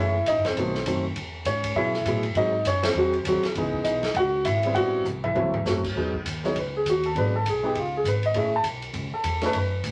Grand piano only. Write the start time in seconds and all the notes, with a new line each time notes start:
Already playing: E3 E5
0.00 G#3 A3 C#4 E4
0.28 D#4 D#5
0.45 C4 C5
0.57 D#3 F#3 A3 B3
0.86 D#3 F#3 A3 C4
1.46 C#4 C#5
1.76 F#3 G#3 B3 C#4 E4 E5
2.06 F#3 G#3 B3 E4
2.36 F#3 G#3 C4 D#4 D#5
2.67 C#4 C#5
2.83 C4 C5
2.96 F#3 G#3 C4 F#4
3.27 F#3 G#3 C4 F#4
3.57 E3 G#3 B3 D#4
3.84 D#4 D#5
4.17 F#4 F#5
4.45 E4 E5
4.64 G3 B3 C4 E4
4.75 F#4 F#5
5.24 E4 E5
5.35 F#3 A3 C4 E4
5.65 F#3 A3 C4 F#4
5.96 F#3 G#3 B3 D#4
6.44 F#3 G#3 B3 D#4 C#5
6.59 B4
6.77 G#4
6.90 F#4
7.06 A4
7.16 F#3 G#3 B3 D4 B4
7.36 A4
7.49 G#4
7.63 G#3 B3 D#4 G4 G#4
7.79 F4
7.97 G#4
8.08 B4
8.26 D#5
8.34 A3 C#4 E4 G#4 E5
8.56 A5
9.14 A4
9.42 A3 C#4 D#4 A4 B4
9.57 B4